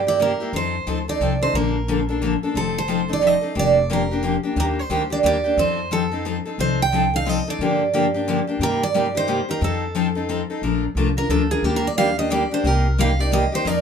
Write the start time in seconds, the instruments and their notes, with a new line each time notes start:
Already playing: upright bass G2
0.07 steel-string acoustic guitar A#3 E4 G4 D5
0.19 steel-string acoustic guitar C3 G3 A#3 E4 G4 A#4
0.40 steel-string acoustic guitar A#3 E4 G4
0.53 upright bass F2, steel-string acoustic guitar F3 C4 D#4 A4 C5
0.87 upright bass D2, steel-string acoustic guitar F3 C4 D#4 A4
1.08 steel-string acoustic guitar C4 D#4 A4 D5
1.20 upright bass C2, steel-string acoustic guitar F3 C4 D#4 A4
1.42 steel-string acoustic guitar C4 D#4 A4 C5
1.53 upright bass A#1, steel-string acoustic guitar D3 F3 A#3 D4 A4 A#4
1.88 steel-string acoustic guitar D3 F3 A#3 D4 A4
2.09 steel-string acoustic guitar A#3 D4 A4
2.22 steel-string acoustic guitar D3 F3 A#3 D4 A4
2.43 steel-string acoustic guitar A#3 D4 A4
2.54 upright bass F1, steel-string acoustic guitar F3 C4 D#4 A4
2.78 steel-string acoustic guitar C5
2.88 steel-string acoustic guitar F3 C4 D#4 A4
3.08 steel-string acoustic guitar C4 D#4 A4
3.13 steel-string acoustic guitar D5
3.21 steel-string acoustic guitar F3 C4 D#4 A4
3.27 steel-string acoustic guitar D#5
3.41 steel-string acoustic guitar C4 D#4 A4
3.55 upright bass F1, steel-string acoustic guitar F3 A#3 D4 G4
3.59 steel-string acoustic guitar D5
3.90 steel-string acoustic guitar F3 A#3 D4 G4 A#4
4.11 steel-string acoustic guitar A#3 D4 G4
4.23 steel-string acoustic guitar F3 A#3 D4 G4
4.43 steel-string acoustic guitar A#3 D4 G4
4.56 upright bass D#2, steel-string acoustic guitar D#3 G3 A#3 D4 G4 A#4
4.79 steel-string acoustic guitar C5
4.90 upright bass D2, steel-string acoustic guitar D#3 G3 A#3 D4 G4
5.10 steel-string acoustic guitar A#3 D4 G4 D5
5.23 upright bass D#2, steel-string acoustic guitar D#3 G3 A#3 D4 G4 D5
5.44 steel-string acoustic guitar A#3 D4 G4
5.57 upright bass F2, steel-string acoustic guitar F3 C4 D#4 A4 C5
5.91 steel-string acoustic guitar F3 C4 D#4 A4
6.12 steel-string acoustic guitar C4 D#4 A4
6.25 steel-string acoustic guitar F3 C4 D#4 A4
6.45 steel-string acoustic guitar C4 D#4 A4
6.58 upright bass C2, steel-string acoustic guitar F3 C4 D#4 A4 C5
6.82 steel-string acoustic guitar G5
6.92 steel-string acoustic guitar F3 C4 D#4 A4
7.14 steel-string acoustic guitar C4 D#4 A4 F5
7.26 steel-string acoustic guitar F3 C4 D#4 A4 D#5
7.47 steel-string acoustic guitar C4 D#4 A4 D5
7.59 upright bass G2, steel-string acoustic guitar D3 F3 A#3 D4 G4
7.93 steel-string acoustic guitar D3 F3 A#3 D4 G4
8.14 steel-string acoustic guitar A#3 D4 G4
8.28 steel-string acoustic guitar D3 F3 A#3 D4 G4
8.47 steel-string acoustic guitar A#3 D4 G4
8.59 upright bass G2, steel-string acoustic guitar C3 G3 A#3 D#4 G4
8.63 steel-string acoustic guitar A#4
8.83 steel-string acoustic guitar D5
8.94 steel-string acoustic guitar C3 G3 A#3 D#4 G4
9.15 steel-string acoustic guitar A#3 D#4 G4 C5
9.28 steel-string acoustic guitar C3 G3 A#3 D#4 G4
9.49 steel-string acoustic guitar A#3 D#4 G4 A#4
9.61 upright bass F2, steel-string acoustic guitar F3 C4 D#4 A4
9.95 steel-string acoustic guitar F3 C4 D#4 A4
10.15 steel-string acoustic guitar C4 D#4 A4
10.29 steel-string acoustic guitar F3 C4 D#4 A4
10.50 steel-string acoustic guitar C4 D#4 A4
10.62 upright bass A#1, steel-string acoustic guitar F3 A3 D4 F4 A#4
10.95 upright bass C2, steel-string acoustic guitar F3 A3 D4 F4 A#4
11.17 steel-string acoustic guitar D4 F4 A#4
11.29 upright bass D2, steel-string acoustic guitar F3 A3 D4 F4 A4 A#4
11.51 steel-string acoustic guitar D4 F4 G#4 A#4
11.63 upright bass D#2, steel-string acoustic guitar D#3 G3 A#3 D4 G4
11.76 steel-string acoustic guitar A#4
11.87 steel-string acoustic guitar D5
11.97 steel-string acoustic guitar D#3 G3 A#3 D4 G4 F5
12.18 steel-string acoustic guitar A#3 D4 G4 D#5
12.30 steel-string acoustic guitar D#3 G3 A#3 D4 G4 D5
12.51 steel-string acoustic guitar A#3 D4 G4 C5
12.64 upright bass C2, steel-string acoustic guitar C3 G3 A#3 D#4 G4 A#4
12.98 steel-string acoustic guitar C3 G3 A#3 D#4 G4 F5
13.19 steel-string acoustic guitar A#3 D#4 G4 D5
13.32 steel-string acoustic guitar C3 G3 A#3 D#4 G4 D#5
13.52 steel-string acoustic guitar A#3 D#4 G4 C5
13.65 upright bass F2, steel-string acoustic guitar F3 A#3 D#4 F4 A#4 D5